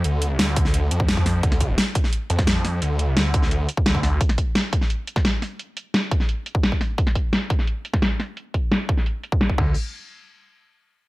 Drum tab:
CC |----------------|----------------|----------------|----------------|
HH |x-x-x-x-x-x-x-o-|x-x-x-x-x-x-x-o-|x-x-x-x-x-x-x-o-|x-x-x-x-x-x-x-o-|
SD |----o--o----o-o-|-o--o--o---oo-o-|----o--o----o-o-|-o--o--o---oo-o-|
BD |------o----o-o--|o-o---o----o----|------o----o-o--|o-o---o----o----|

CC |----------------|----------------|--------------x-|----------------|
HH |x-x-x-x-x-x-x-o-|x-x-x-x-x-x-x-o-|x-x-x-x-x-x-x---|----------------|
SD |----o--o----o-o-|-o--o--o---oo-o-|----o--o----o---|----------------|
BD |------o----o-o--|o-o---o----o----|--o---o----o-oo-|----------------|